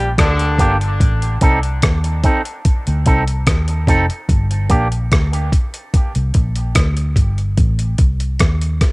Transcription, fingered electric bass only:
0, 0, Header, 1, 2, 480
1, 0, Start_track
1, 0, Key_signature, -2, "minor"
1, 0, Tempo, 822594
1, 585, Time_signature, 4, 2, 24, 8
1, 5207, End_track
2, 0, Start_track
2, 0, Title_t, "Fingered electric bass"
2, 0, Program_c, 0, 33
2, 0, Note_on_c, 0, 34, 89
2, 92, Note_off_c, 0, 34, 0
2, 111, Note_on_c, 0, 38, 91
2, 331, Note_off_c, 0, 38, 0
2, 346, Note_on_c, 0, 31, 89
2, 569, Note_off_c, 0, 31, 0
2, 590, Note_on_c, 0, 33, 98
2, 811, Note_off_c, 0, 33, 0
2, 830, Note_on_c, 0, 36, 81
2, 1051, Note_off_c, 0, 36, 0
2, 1072, Note_on_c, 0, 39, 90
2, 1292, Note_off_c, 0, 39, 0
2, 1678, Note_on_c, 0, 38, 87
2, 1781, Note_off_c, 0, 38, 0
2, 1791, Note_on_c, 0, 36, 91
2, 2011, Note_off_c, 0, 36, 0
2, 2027, Note_on_c, 0, 39, 83
2, 2249, Note_off_c, 0, 39, 0
2, 2265, Note_on_c, 0, 29, 88
2, 2381, Note_off_c, 0, 29, 0
2, 2508, Note_on_c, 0, 31, 110
2, 2730, Note_off_c, 0, 31, 0
2, 2748, Note_on_c, 0, 34, 82
2, 2970, Note_off_c, 0, 34, 0
2, 2991, Note_on_c, 0, 38, 81
2, 3211, Note_off_c, 0, 38, 0
2, 3593, Note_on_c, 0, 36, 85
2, 3699, Note_off_c, 0, 36, 0
2, 3709, Note_on_c, 0, 34, 92
2, 3930, Note_off_c, 0, 34, 0
2, 3946, Note_on_c, 0, 38, 97
2, 4168, Note_off_c, 0, 38, 0
2, 4182, Note_on_c, 0, 31, 85
2, 4406, Note_off_c, 0, 31, 0
2, 4426, Note_on_c, 0, 33, 99
2, 4648, Note_off_c, 0, 33, 0
2, 4665, Note_on_c, 0, 36, 76
2, 4888, Note_off_c, 0, 36, 0
2, 4910, Note_on_c, 0, 39, 85
2, 5130, Note_off_c, 0, 39, 0
2, 5207, End_track
0, 0, End_of_file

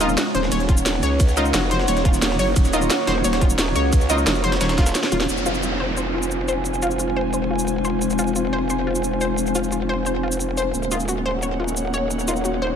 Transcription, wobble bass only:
0, 0, Header, 1, 2, 480
1, 0, Start_track
1, 0, Tempo, 340909
1, 1687, Time_signature, 4, 2, 24, 8
1, 17962, End_track
2, 0, Start_track
2, 0, Title_t, "Wobble bass"
2, 0, Program_c, 0, 39
2, 0, Note_on_c, 0, 27, 100
2, 228, Note_off_c, 0, 27, 0
2, 487, Note_on_c, 0, 27, 105
2, 708, Note_off_c, 0, 27, 0
2, 728, Note_on_c, 0, 27, 103
2, 1428, Note_off_c, 0, 27, 0
2, 1448, Note_on_c, 0, 37, 97
2, 2148, Note_off_c, 0, 37, 0
2, 2167, Note_on_c, 0, 29, 104
2, 2628, Note_off_c, 0, 29, 0
2, 2647, Note_on_c, 0, 27, 105
2, 3348, Note_off_c, 0, 27, 0
2, 3367, Note_on_c, 0, 30, 92
2, 3588, Note_off_c, 0, 30, 0
2, 3608, Note_on_c, 0, 27, 103
2, 4068, Note_off_c, 0, 27, 0
2, 4328, Note_on_c, 0, 27, 105
2, 4548, Note_off_c, 0, 27, 0
2, 4567, Note_on_c, 0, 27, 102
2, 5268, Note_off_c, 0, 27, 0
2, 5288, Note_on_c, 0, 37, 96
2, 5988, Note_off_c, 0, 37, 0
2, 6008, Note_on_c, 0, 29, 101
2, 6468, Note_off_c, 0, 29, 0
2, 6488, Note_on_c, 0, 27, 101
2, 6948, Note_off_c, 0, 27, 0
2, 7208, Note_on_c, 0, 27, 96
2, 7428, Note_off_c, 0, 27, 0
2, 7447, Note_on_c, 0, 29, 94
2, 15103, Note_off_c, 0, 29, 0
2, 15128, Note_on_c, 0, 27, 91
2, 17962, Note_off_c, 0, 27, 0
2, 17962, End_track
0, 0, End_of_file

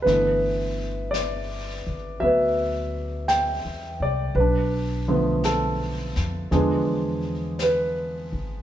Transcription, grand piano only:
0, 0, Header, 1, 2, 480
1, 0, Start_track
1, 0, Key_signature, 1, "major"
1, 0, Tempo, 1077199
1, 26, Time_signature, 4, 2, 24, 8
1, 3842, End_track
2, 0, Start_track
2, 0, Title_t, "Grand piano"
2, 0, Program_c, 0, 0
2, 0, Control_c, 0, 64, 127
2, 11, Note_on_c, 0, 71, 64
2, 22, Note_on_c, 0, 50, 42
2, 25, Note_on_c, 0, 52, 38
2, 26, Note_on_c, 0, 59, 48
2, 27, Note_on_c, 0, 57, 39
2, 32, Control_c, 0, 64, 0
2, 40, Note_on_c, 0, 64, 51
2, 100, Control_c, 0, 64, 127
2, 494, Note_on_c, 0, 74, 74
2, 512, Note_off_c, 0, 71, 0
2, 972, Note_off_c, 0, 64, 0
2, 980, Note_on_c, 0, 54, 40
2, 981, Note_on_c, 0, 76, 72
2, 986, Note_off_c, 0, 59, 0
2, 992, Note_off_c, 0, 74, 0
2, 993, Note_on_c, 0, 59, 46
2, 1001, Note_on_c, 0, 71, 51
2, 1443, Note_off_c, 0, 76, 0
2, 1462, Note_on_c, 0, 79, 68
2, 1771, Note_off_c, 0, 79, 0
2, 1793, Note_on_c, 0, 74, 71
2, 1933, Note_off_c, 0, 71, 0
2, 1940, Note_off_c, 0, 50, 0
2, 1940, Note_off_c, 0, 54, 0
2, 1941, Note_off_c, 0, 52, 0
2, 1941, Note_on_c, 0, 71, 61
2, 1942, Note_off_c, 0, 57, 0
2, 1946, Note_off_c, 0, 59, 0
2, 1948, Note_off_c, 0, 74, 0
2, 1948, Control_c, 0, 64, 0
2, 1962, Note_on_c, 0, 62, 47
2, 2015, Control_c, 0, 64, 127
2, 2264, Note_on_c, 0, 50, 53
2, 2264, Note_on_c, 0, 53, 42
2, 2268, Note_on_c, 0, 57, 43
2, 2270, Note_on_c, 0, 59, 53
2, 2428, Note_on_c, 0, 69, 68
2, 2435, Note_off_c, 0, 71, 0
2, 2893, Note_off_c, 0, 62, 0
2, 2895, Note_off_c, 0, 50, 0
2, 2896, Note_off_c, 0, 53, 0
2, 2901, Note_off_c, 0, 57, 0
2, 2901, Note_on_c, 0, 50, 43
2, 2902, Note_off_c, 0, 59, 0
2, 2902, Note_on_c, 0, 53, 41
2, 2905, Note_on_c, 0, 68, 55
2, 2906, Control_c, 0, 64, 0
2, 2906, Note_on_c, 0, 56, 42
2, 2910, Note_on_c, 0, 59, 47
2, 2916, Note_on_c, 0, 62, 44
2, 2919, Note_off_c, 0, 69, 0
2, 2979, Control_c, 0, 64, 127
2, 3397, Note_on_c, 0, 71, 58
2, 3694, Note_off_c, 0, 68, 0
2, 3842, Note_off_c, 0, 50, 0
2, 3842, Note_off_c, 0, 53, 0
2, 3842, Note_off_c, 0, 56, 0
2, 3842, Note_off_c, 0, 59, 0
2, 3842, Note_off_c, 0, 62, 0
2, 3842, Note_off_c, 0, 71, 0
2, 3842, End_track
0, 0, End_of_file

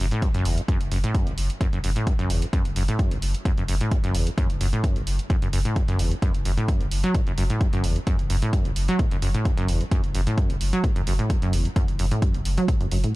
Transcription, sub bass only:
0, 0, Header, 1, 2, 480
1, 0, Start_track
1, 0, Key_signature, 3, "minor"
1, 0, Tempo, 461538
1, 711, Time_signature, 4, 2, 24, 8
1, 13680, End_track
2, 0, Start_track
2, 0, Title_t, "Sub bass"
2, 0, Program_c, 0, 38
2, 0, Note_on_c, 0, 30, 92
2, 116, Note_off_c, 0, 30, 0
2, 358, Note_on_c, 0, 30, 75
2, 465, Note_off_c, 0, 30, 0
2, 471, Note_on_c, 0, 30, 96
2, 596, Note_off_c, 0, 30, 0
2, 838, Note_on_c, 0, 30, 78
2, 946, Note_off_c, 0, 30, 0
2, 952, Note_on_c, 0, 30, 102
2, 1076, Note_off_c, 0, 30, 0
2, 1318, Note_on_c, 0, 30, 78
2, 1426, Note_off_c, 0, 30, 0
2, 1432, Note_on_c, 0, 30, 100
2, 1556, Note_off_c, 0, 30, 0
2, 1799, Note_on_c, 0, 30, 72
2, 1906, Note_off_c, 0, 30, 0
2, 1912, Note_on_c, 0, 30, 91
2, 2036, Note_off_c, 0, 30, 0
2, 2279, Note_on_c, 0, 30, 74
2, 2386, Note_off_c, 0, 30, 0
2, 2392, Note_on_c, 0, 30, 102
2, 2516, Note_off_c, 0, 30, 0
2, 2759, Note_on_c, 0, 30, 78
2, 2866, Note_off_c, 0, 30, 0
2, 2872, Note_on_c, 0, 30, 105
2, 2996, Note_off_c, 0, 30, 0
2, 3238, Note_on_c, 0, 30, 79
2, 3345, Note_off_c, 0, 30, 0
2, 3352, Note_on_c, 0, 30, 103
2, 3476, Note_off_c, 0, 30, 0
2, 3719, Note_on_c, 0, 30, 72
2, 3826, Note_off_c, 0, 30, 0
2, 3832, Note_on_c, 0, 30, 102
2, 3956, Note_off_c, 0, 30, 0
2, 4198, Note_on_c, 0, 30, 72
2, 4306, Note_off_c, 0, 30, 0
2, 4312, Note_on_c, 0, 30, 95
2, 4436, Note_off_c, 0, 30, 0
2, 4679, Note_on_c, 0, 30, 79
2, 4786, Note_off_c, 0, 30, 0
2, 4792, Note_on_c, 0, 30, 101
2, 4916, Note_off_c, 0, 30, 0
2, 5159, Note_on_c, 0, 30, 77
2, 5266, Note_off_c, 0, 30, 0
2, 5272, Note_on_c, 0, 30, 99
2, 5396, Note_off_c, 0, 30, 0
2, 5638, Note_on_c, 0, 30, 75
2, 5745, Note_off_c, 0, 30, 0
2, 5752, Note_on_c, 0, 30, 100
2, 5876, Note_off_c, 0, 30, 0
2, 6119, Note_on_c, 0, 30, 73
2, 6225, Note_off_c, 0, 30, 0
2, 6231, Note_on_c, 0, 30, 97
2, 6356, Note_off_c, 0, 30, 0
2, 6598, Note_on_c, 0, 30, 78
2, 6705, Note_off_c, 0, 30, 0
2, 6711, Note_on_c, 0, 30, 102
2, 6835, Note_off_c, 0, 30, 0
2, 7078, Note_on_c, 0, 30, 77
2, 7185, Note_off_c, 0, 30, 0
2, 7191, Note_on_c, 0, 30, 99
2, 7316, Note_off_c, 0, 30, 0
2, 7559, Note_on_c, 0, 30, 75
2, 7665, Note_off_c, 0, 30, 0
2, 7671, Note_on_c, 0, 30, 95
2, 7796, Note_off_c, 0, 30, 0
2, 8038, Note_on_c, 0, 30, 75
2, 8146, Note_off_c, 0, 30, 0
2, 8152, Note_on_c, 0, 30, 95
2, 8276, Note_off_c, 0, 30, 0
2, 8518, Note_on_c, 0, 30, 78
2, 8625, Note_off_c, 0, 30, 0
2, 8631, Note_on_c, 0, 30, 107
2, 8756, Note_off_c, 0, 30, 0
2, 8998, Note_on_c, 0, 30, 79
2, 9105, Note_off_c, 0, 30, 0
2, 9112, Note_on_c, 0, 30, 98
2, 9236, Note_off_c, 0, 30, 0
2, 9478, Note_on_c, 0, 30, 75
2, 9585, Note_off_c, 0, 30, 0
2, 9591, Note_on_c, 0, 30, 103
2, 9716, Note_off_c, 0, 30, 0
2, 9958, Note_on_c, 0, 30, 73
2, 10065, Note_off_c, 0, 30, 0
2, 10072, Note_on_c, 0, 30, 103
2, 10196, Note_off_c, 0, 30, 0
2, 10438, Note_on_c, 0, 30, 79
2, 10545, Note_off_c, 0, 30, 0
2, 10551, Note_on_c, 0, 30, 105
2, 10676, Note_off_c, 0, 30, 0
2, 10918, Note_on_c, 0, 30, 77
2, 11025, Note_off_c, 0, 30, 0
2, 11032, Note_on_c, 0, 30, 98
2, 11156, Note_off_c, 0, 30, 0
2, 11398, Note_on_c, 0, 30, 73
2, 11505, Note_off_c, 0, 30, 0
2, 11511, Note_on_c, 0, 30, 99
2, 11636, Note_off_c, 0, 30, 0
2, 11878, Note_on_c, 0, 30, 75
2, 11985, Note_off_c, 0, 30, 0
2, 11991, Note_on_c, 0, 30, 102
2, 12115, Note_off_c, 0, 30, 0
2, 12358, Note_on_c, 0, 30, 75
2, 12465, Note_off_c, 0, 30, 0
2, 12471, Note_on_c, 0, 30, 106
2, 12596, Note_off_c, 0, 30, 0
2, 12838, Note_on_c, 0, 30, 75
2, 12946, Note_off_c, 0, 30, 0
2, 12952, Note_on_c, 0, 30, 100
2, 13076, Note_off_c, 0, 30, 0
2, 13319, Note_on_c, 0, 30, 75
2, 13426, Note_off_c, 0, 30, 0
2, 13432, Note_on_c, 0, 30, 93
2, 13556, Note_off_c, 0, 30, 0
2, 13680, End_track
0, 0, End_of_file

